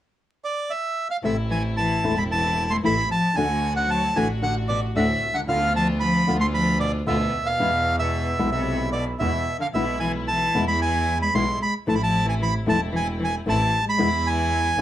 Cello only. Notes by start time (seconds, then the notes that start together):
1.23 C3
1.50 E3
1.77 E3
2.16 G#3
2.29 E3
2.71 A3
2.82 E3
3.09 F3
3.37 D3
3.76 D3
3.88 F#3
4.15 E3
4.42 D3
4.69 B2
4.95 A2
5.34 D3
5.48 D3
5.75 F3
5.99 F3
6.39 A3
6.53 F3
6.80 B2
7.06 B2
7.46 B2
8.00 B2
8.53 C3
8.93 B2
9.20 B2
9.60 D3
9.75 B2
10.00 E3
10.28 E3
10.66 G#3
10.81 E3
11.21 G#3
11.34 G#3
11.60 G#3
11.87 E3
11.93 G#3
12.00 F3
12.25 E3
12.40 E3
12.66 F3
12.93 E3
13.19 E3
13.47 E3
13.86 G#3
14.26 E3